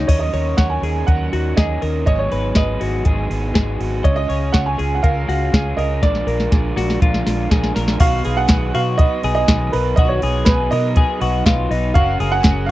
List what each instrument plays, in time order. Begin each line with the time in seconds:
0.08 fingered electric bass D#2, overdriven electric guitar D#3 F#3 C#4 D#4 A#4, upright piano C#5, clean electric guitar D#5, kick, closed hi-hat, crash
0.19 upright piano D#5
0.33 fingered electric bass D#2, overdriven electric guitar C#4 D#4 A#4, clean electric guitar C#5, open hi-hat
0.57 fingered electric bass D#2, overdriven electric guitar F#3 C#4 D#4 A#4, clean electric guitar C#5, upright piano F#5, kick, snare, closed hi-hat
0.70 upright piano G#5
0.82 fingered electric bass D#2, overdriven electric guitar C#4 D#4 A#4, clean electric guitar G#4, open hi-hat
1.06 fingered electric bass D#2, overdriven electric guitar D#3 F#3 C#4 D#4 A#4, clean electric guitar A#4, upright piano F#5, kick, closed hi-hat
1.32 fingered electric bass D#2, overdriven electric guitar C#4 D#4 A#4, clean electric guitar F#4, open hi-hat
1.56 fingered electric bass D#2, overdriven electric guitar F#3 C#4 D#4 A#4, clean electric guitar G#4, upright piano D#5, kick, snare, closed hi-hat
1.81 fingered electric bass D#2, overdriven electric guitar C#4 D#4 A#4, clean electric guitar A#4, open hi-hat
2.06 fingered electric bass G#1, overdriven electric guitar G#2 D#3 F#3 B3 D#4 G#4, clean electric guitar C#5, upright piano D#5, kick, closed hi-hat
2.19 upright piano C#5
2.30 fingered electric bass G#1, overdriven electric guitar F#3 B3 D#4 G#4, clean electric guitar B4, open hi-hat
2.55 fingered electric bass G#1, overdriven electric guitar F#3 B3 D#4 G#4, clean electric guitar B4, upright piano D#5, kick, snare, closed hi-hat
2.80 fingered electric bass G#1, overdriven electric guitar F#3 B3 D#4 G#4, clean electric guitar F#4, open hi-hat
3.04 fingered electric bass G#1, overdriven electric guitar G#2 D#3 F#3 B3 D#4 G#4, clean electric guitar G#4, kick, closed hi-hat
3.30 fingered electric bass G#1, overdriven electric guitar F#3 B3 D#4 G#4, open hi-hat
3.55 fingered electric bass G#1, overdriven electric guitar F#3 B3 D#4 G#4, clean electric guitar G#4, kick, snare, closed hi-hat
3.79 fingered electric bass G#1, overdriven electric guitar F#3 B3 D#4 G#4, clean electric guitar F#4, open hi-hat
4.04 fingered electric bass C#2, overdriven electric guitar C#3 G#3 C#4 F4 G#4, upright piano C#5, clean electric guitar D#5, kick, closed hi-hat
4.16 upright piano D#5
4.28 fingered electric bass C#2, overdriven electric guitar C#4 F4 G#4, clean electric guitar C#5, open hi-hat
4.52 fingered electric bass C#2, overdriven electric guitar G#3 C#4 F4 G#4, clean electric guitar C#5, upright piano F#5, kick, snare, closed hi-hat
4.66 upright piano G#5
4.78 fingered electric bass C#2, overdriven electric guitar C#4 F4 G#4, clean electric guitar G#4, open hi-hat
4.95 upright piano F#5
5.02 fingered electric bass C#2, overdriven electric guitar C#3 G#3 C#4 F4 G#4, clean electric guitar A#4, upright piano F5, kick, closed hi-hat
5.27 fingered electric bass C#2, overdriven electric guitar C#4 F4 G#4, clean electric guitar F#4, open hi-hat
5.52 fingered electric bass C#2, overdriven electric guitar G#3 C#4 F4 G#4, clean electric guitar G#4, kick, snare, closed hi-hat
5.77 fingered electric bass C#2, overdriven electric guitar C#4 F4 G#4, clean electric guitar A#4, upright piano D#5, open hi-hat
6.02 fingered electric bass A#1, overdriven electric guitar A#2 F3 G#3 D4 F4 A#4, upright piano D5, clean electric guitar D5, kick, snare, closed hi-hat
6.15 snare
6.27 fingered electric bass A#1, overdriven electric guitar G#3 D4 F4 A#4, clean electric guitar A#4, open hi-hat
6.40 snare
6.51 fingered electric bass A#1, overdriven electric guitar G#3 D4 F4 A#4, clean electric guitar G#4, kick, snare, closed hi-hat
6.75 fingered electric bass A#1, overdriven electric guitar G#3 D4 F4 A#4, clean electric guitar F#4, snare, open hi-hat
6.90 snare
7.00 fingered electric bass A#1, overdriven electric guitar A#2 F3 G#3 D4 F4 A#4, clean electric guitar F4, kick, closed hi-hat
7.14 snare
7.25 fingered electric bass A#1, overdriven electric guitar G#3 D4 F4 A#4, snare, open hi-hat
7.50 fingered electric bass A#1, overdriven electric guitar G#3 D4 F4 A#4, clean electric guitar G#4, kick, snare, closed hi-hat
7.64 snare
7.75 fingered electric bass A#1, overdriven electric guitar G#3 D4 F4 A#4, clean electric guitar A#4, snare, open hi-hat
7.88 snare
7.99 fingered electric bass B1, overdriven electric guitar B2 D#3 F#3 B3 D#4 B4, clean electric guitar F#4, upright piano F5, kick, closed hi-hat, crash
8.23 fingered electric bass B1, overdriven electric guitar F#3 B3 D#4 B4, clean electric guitar G#4, open hi-hat
8.37 upright piano F#5
8.49 fingered electric bass B1, overdriven electric guitar B2 D#3 F#3 B3 D#4 B4, kick, snare, clap, closed hi-hat
8.74 fingered electric bass B2, overdriven electric guitar F#3 B3 D#4 B4, clean electric guitar F#4, upright piano F5, open hi-hat
8.98 overdriven electric guitar F#3 B3 D#4 B4, upright piano D#5, kick, closed hi-hat
9.23 fingered electric bass B1, overdriven electric guitar F#3 B3 D#4 B4, clean electric guitar G#4, open hi-hat
9.35 upright piano D#5
9.47 fingered electric bass B1, overdriven electric guitar B2 D#3 F#3 B3 D#4 B4, kick, snare, clap, closed hi-hat
9.72 fingered electric bass B1, overdriven electric guitar F#3 B3 D#4 B4, clean electric guitar A#4, upright piano B4, open hi-hat
9.96 fingered electric bass B1, overdriven electric guitar B2 D#3 F#3 B3 D#4 B4, clean electric guitar F#4, upright piano D#5, kick, closed hi-hat
10.09 upright piano C#5
10.22 fingered electric bass B1, overdriven electric guitar F#3 B3 D#4 B4, clean electric guitar G#4, open hi-hat
10.45 fingered electric bass B1, overdriven electric guitar B2 D#3 F#3 B3 D#4 B4, upright piano B4, kick, snare, clap, closed hi-hat
10.71 fingered electric bass B2, overdriven electric guitar B3 D#4 B4, clean electric guitar A#4, upright piano D#5, open hi-hat
10.75 overdriven electric guitar F#3
10.96 overdriven electric guitar F#3 B3 D#4 B4, clean electric guitar G#4, kick, closed hi-hat
11.20 fingered electric bass B1, overdriven electric guitar F#3 B3 D#4 B4, clean electric guitar F#4, open hi-hat
11.46 fingered electric bass B1, overdriven electric guitar B2 D#3 F#3 B3 D#4 B4, clean electric guitar F4, kick, snare, clap, closed hi-hat
11.70 fingered electric bass B1, overdriven electric guitar F#3 B3 D#4 B4, clean electric guitar D#4, open hi-hat
11.94 fingered electric bass F#1, overdriven electric guitar F#3 C#4 F#4, clean electric guitar F#4, upright piano F5, kick, closed hi-hat
11.98 overdriven electric guitar A#4
12.20 fingered electric bass F#1, overdriven electric guitar C#4 F#4 A#4, clean electric guitar G#4, open hi-hat
12.32 upright piano F#5
12.44 fingered electric bass F#1, overdriven electric guitar F#3 C#4 F#4 A#4, kick, snare, clap, closed hi-hat
12.66 upright piano F5